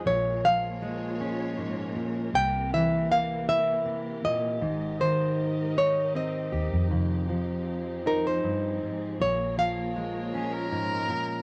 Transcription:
<<
  \new Staff \with { instrumentName = "Nylon-string guitar" } { \time 3/4 \key bes \dorian \tempo 4 = 79 des''8 f''4. r4 | g''8 e''8 f''8 e''4 ees''8~ | ees''8 c''4 des''8 ees''8. r16 | r4. bes'16 c''4~ c''16 |
des''8 f''4. r4 | }
  \new Staff \with { instrumentName = "Violin" } { \time 3/4 \key bes \dorian r2. | r2. | r2. | r2. |
r4. aes'16 bes'4~ bes'16 | }
  \new Staff \with { instrumentName = "String section" } { \time 3/4 \key bes \dorian <bes f' aes' bes' des''>2. | <c e g'>2. | <aes ees' bes' ees''>2. | <f c' aes'>2. |
<bes f' bes' des''>2. | }
  \new Staff \with { instrumentName = "Steel-string acoustic guitar" } { \clef bass \time 3/4 \key bes \dorian << { aes4 aes8 des'4. | r4 bes8 e'4. | r4. ees'8 c'8 g'8 | r4. ees'4. |
r4 aes8 des'4. | } \\ { bes,8 f4. aes,8 bes,8 | c8 e4. c8 bes,8 | aes,8 ees2~ ees8 | f,8 f4. g,8 aes,8 |
bes,8 f4. aes,8 bes,8 | } >> }
  \new Staff \with { instrumentName = "Fingered electric bass" } { \clef bass \time 3/4 \key bes \dorian bes,,2 r4 | c,2 r4 | aes,,2 r8 ees,16 f,16 | f,,2 r4 |
bes,,2 r4 | }
>>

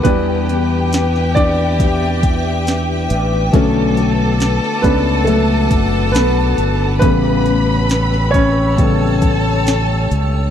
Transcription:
<<
  \new Staff \with { instrumentName = "Ambient pad" } { \time 4/4 \key e \dorian \tempo 4 = 69 << { <b' d'''>1~ | <b' d'''>1 | <cis'' e'''>1 | } \\ { <e'' g''>1 | <fis'' a''>1 | <g'' a''>1 | } >> }
  \new Staff \with { instrumentName = "Violin section" } { \time 4/4 \key e \dorian <g' g''>1 | <a' a''>1 | <b' b''>2 <a' a''>2 | }
  \new Staff \with { instrumentName = "Grand piano" } { \time 4/4 \key e \dorian <b b'>4. <d' d''>4. r4 | r4. <b b'>8 <a a'>4 <b b'>4 | b'4. <cis' cis''>4. r4 | }
  \new Staff \with { instrumentName = "Grand piano" } { \time 4/4 \key e \dorian <e g d'>4. r2 r8 | <d a cis'>4. <a cis' d'>8 r2 | <cis g b>8 r4. <cis g b>8 r4. | }
  \new Staff \with { instrumentName = "Steel-string acoustic guitar" } { \time 4/4 \key e \dorian <e b d' g'>8 <b d' g'>4. <e b d' g'>2 | <b, fis a d' fis'>8 <a d' fis'>4. <fis a d' fis'>2 | <a, e g a cis' a'>8 <g a cis' a'>4. <g a cis' a'>2 | }
  \new Staff \with { instrumentName = "Fingered electric bass" } { \clef bass \time 4/4 \key e \dorian e,2.~ e,8 a,,8 | b,,4~ b,,16 r16 cis,4 fis,,8 b,,8 g,,8 | a,,2.~ a,,8 cis,8 | }
  \new DrumStaff \with { instrumentName = "Drums" } \drummode { \time 4/4 <hh bd>8 hh8 <hh sn>16 sn16 <hh bd>8 <hh bd>8 <hh bd>8 <hh sn>8 hh8 | <hh bd>8 hh8 <hh sn>16 sn16 <hh bd>8 hh8 <hh bd>8 <hh sn>8 hh8 | <hh bd>8 hh8 <hh sn>16 sn16 <hh bd>8 <hh bd>8 <hh bd>8 <hh sn>8 hh8 | }
>>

